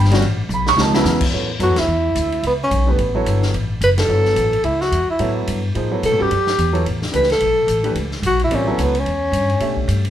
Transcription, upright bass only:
Already playing: G1
0.22 A1
0.49 B1
0.76 C#2
1.04 E2
1.32 A2
1.59 F#2
1.70 E2
1.79 C#2
1.88 E2
2.15 D2
2.43 C#2
2.71 B1
2.99 A1
3.26 G1
3.54 A1
3.81 F#1
4.08 G1
4.35 A1
4.64 C#2
4.91 E2
5.07 muted upright bass stroke
5.19 A2
5.47 G2
5.75 A2
6.03 B2
6.12 A2
6.21 G2
6.31 F#2
6.58 E2
6.86 A1
7.13 C#2
7.40 B1
7.67 A1
7.95 C#2
8.22 B1
8.50 A1
8.78 C#2
9.05 E2
9.32 G2
9.60 B2
9.88 G2

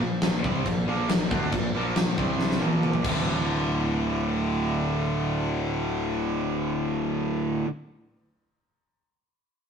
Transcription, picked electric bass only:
0.00 A#1
0.22 A#1
0.44 C2
0.66 A#1
0.88 A#1
1.10 A#1
1.31 D2
1.52 A#1
1.75 A#1
1.96 A#1
2.17 C2
2.62 A#1
3.04 D1

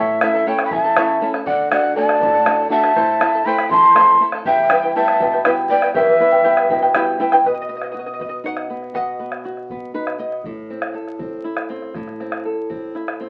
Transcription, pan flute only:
0.48 C#5
0.64 G5
0.73 E5
1.47 D5
1.72 D5
1.97 D5
2.71 E5
3.46 G5
3.72 A5
4.47 E5
4.97 E5
5.70 D5
5.95 B4

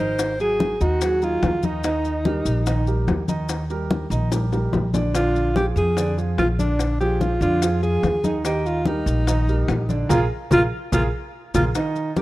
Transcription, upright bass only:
Already playing: G#1
0.81 D#2
1.42 D#2
2.45 A#1
3.07 D#2
4.10 A#1
4.73 A#1
5.76 F2
6.38 A#1
7.41 F2
8.03 D#2
9.06 A#1
9.68 A#1
10.10 A#1
10.51 A#1
10.92 A#1
11.54 A#1

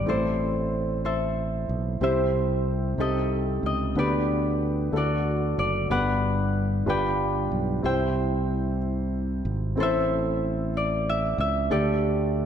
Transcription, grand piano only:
0.06 A2 C4 E4 A4 C5
2.01 C3 C4 E4 G4 C5
2.98 C3 C4 D#4 G4 A4
3.96 D3 B3 D4 G4 B4
4.92 D3 A3 D4 E4 A4
5.00 F#4
5.90 G2 B3 D4 G4 B4
6.86 G2 D4 F4 G4 B4
7.82 C3 C4 E4 G4 C5
9.76 A2 C4 E4 A4 B4
9.85 C5
11.70 D3 A3 D4 G4 A4

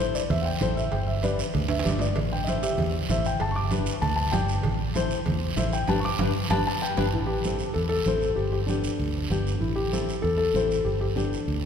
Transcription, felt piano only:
0.15 D5
0.30 E5
0.41 F#5 G5
0.77 E5
0.92 G5
1.07 E5
1.23 B4 D5
1.69 E5
2.01 D5
2.17 D5
2.32 G5
2.44 D#5
2.48 E5
2.62 G4 E5
3.10 E5
3.26 G5
3.41 A5
3.51 C#6
3.56 D6
4.02 A5
4.16 A5
4.32 G5
5.57 E5
5.73 G5
5.89 A5
6.00 C#6
6.05 D6
6.51 A5
6.67 A5
6.82 G5
7.13 E4
7.26 G4
7.74 A4
7.89 A4
8.36 G4
8.52 G4
8.66 D4
9.60 E4
9.75 G4
10.22 A4
10.37 A4
10.84 G4
11.01 G4
11.16 D4

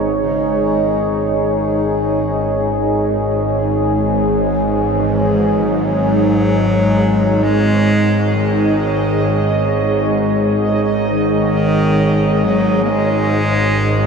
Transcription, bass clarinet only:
0.19 C#3
0.64 D#3
1.09 D#3
4.72 E3
5.64 F#3
7.43 G#3
8.34 D#3
11.09 D#3
12.44 F#3
12.84 A#3
12.90 G#3

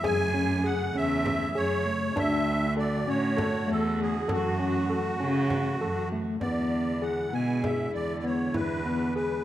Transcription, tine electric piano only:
0.04 G#4
0.34 C#4
0.64 G#4
0.95 C#4
1.55 G#4
1.86 A3
2.16 D4
2.77 A4
3.08 C#4
3.37 A4
3.68 A3
4.29 A4
4.60 C#4
4.90 A4
5.20 C#4
5.81 A4
6.12 A3
6.42 B3
7.02 G#4
7.33 B3
7.64 G#4
8.24 B3
8.54 E4
8.85 B3
9.16 G#4

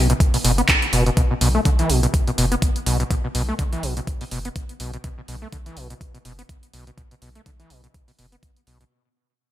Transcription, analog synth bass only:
Already playing: B1
0.44 F#1
0.93 F#1
1.41 B1
1.65 B1
1.90 B1
2.38 F#1
2.86 B1
3.35 B1
3.59 B1
3.83 B1
4.32 F#1
4.80 B1
5.28 B1
5.53 B1
5.77 B1
6.25 F#1
6.74 B1
7.22 B1
7.46 B1
7.70 B1
8.19 F#1
8.67 B1

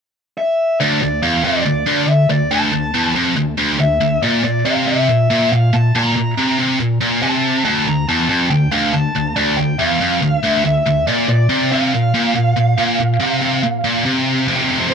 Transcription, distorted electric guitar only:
0.80 D2
1.02 D2
1.23 E2
1.44 F2
1.66 D2
1.87 D2
2.08 D2
2.30 D2
2.51 D2
2.73 D2
2.94 E2
3.16 F2
3.37 D2
3.58 D2
3.79 D2
4.00 D2
4.23 A#2
4.44 A#2
4.65 C3
4.87 C3
5.09 A#2
5.30 A#2
5.52 A#2
5.73 A#2
5.95 A#2
6.16 A#2
6.38 C3
6.59 C3
6.80 A#2
7.01 A#2
7.22 C3
7.65 D2
7.87 D2
8.09 E2
8.29 F2
8.50 D2
8.72 D2
8.94 D2
9.16 D2
9.36 D2
9.58 D2
9.79 E2
10.01 F2
10.22 D2
10.43 D2
10.64 D2
10.86 D2
11.07 A#2
11.29 A#2
11.49 C3
11.72 C3
11.94 A#2
12.14 A#2
12.35 A#2
12.56 A#2
12.78 A#2
13.00 A#2
13.20 C3
13.42 C3
13.64 A#2
13.84 A#2
14.05 C3
14.48 F2 C3
14.55 F2 C3
14.62 F2 C3
14.71 F2 C3
14.79 F2 C3
14.87 F2 C3

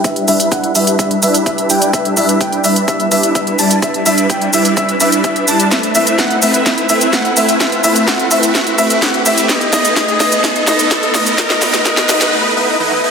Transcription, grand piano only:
0.04 E5
0.28 E5
0.52 F#5
0.75 E5
0.99 E5
1.23 E5
1.46 E5
1.70 G5
1.93 E5
2.17 E5
2.41 G5
2.64 E5
2.88 E5
3.12 E5
3.35 E5
3.59 A5
3.82 E5
4.06 E5
4.30 G5
4.53 E5
4.77 E5
5.01 E5
5.24 E5
5.48 A5
5.72 E5
5.95 E5
6.19 F#5
6.42 E5
6.66 E5
6.90 E5
7.13 F#5
7.37 E5
7.60 E5
7.84 E5
8.07 F#5
8.31 E5
8.55 E5
8.78 E5
9.02 F#5
9.26 E5
9.49 D#5
9.73 D#5
9.97 D#5
10.20 D#5
10.44 D#5
10.67 D#5
10.91 D#5
11.15 D#5
11.38 D#5
11.62 D#5
11.85 D#5
12.09 D#5

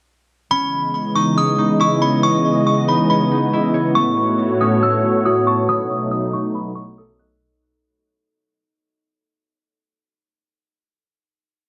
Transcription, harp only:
0.51 C#4
1.15 D#4
1.37 C#4
1.58 D#4
1.80 E4
2.02 C#5
2.23 C#4
2.88 D#4
3.10 C#4
3.31 D#4
3.53 E4
3.74 C#5
3.96 A3
4.61 C#4
4.83 A3
5.04 C#4
5.26 F#4
5.47 A5
5.68 B3
6.34 D#4
6.55 B3
6.76 D#4
6.98 A4
7.20 D#5

